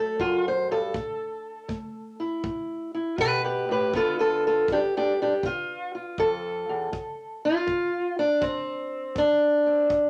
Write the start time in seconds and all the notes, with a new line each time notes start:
Already playing: A2 F#3 A3 A4
0.20 F#2 F4, kick
0.48 C5
0.71 G2 A4
0.94 A2, kick
1.68 A3, kick
2.20 E4
2.44 A2, kick
2.95 E4
3.18 B2 G4 B4, kick
3.44 G4 B4
3.69 A2 G4 B4
3.93 G2 D3 B3 F4 A4, kick
4.19 F4 A4
4.47 F4 A4
4.68 D3 D4, kick
4.73 G4
4.97 D4 G4
5.22 D4 G4
5.43 D3 F4, kick
5.95 F4
6.18 F2 A4, kick
6.69 E2
6.93 D2, kick
7.45 F4
7.67 D3, kick
8.19 D4
8.41 A2 C4, kick
9.15 D3 D4, kick
9.66 C4
9.90 D2, kick